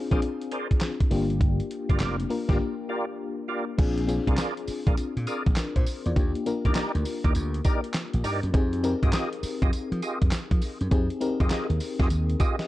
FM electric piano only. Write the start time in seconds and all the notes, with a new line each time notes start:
Already playing: C4 D4 F4 G#4
0.11 C4 D4 F4 G#4
1.11 A#3 D4 F4 G4
2.29 A#3 D4 F4 A#4
2.48 A#3 D4 F4 G4
3.78 C4 D4 F4 G#4
4.07 C4 D4 F4 G#4
5.57 D4 A#4
5.76 C5
6.06 F4 D5
6.16 A#3 D4 F4 G4
6.46 A#3 D4 F4 A#4
8.53 C4 D#4 G4 G#4
8.83 C4 D#4 G4 A#4
10.91 C4 D#4 G4 G#4
11.21 C4 D#4 G4 A#4
12.40 G#4 F5
12.59 G4 D#5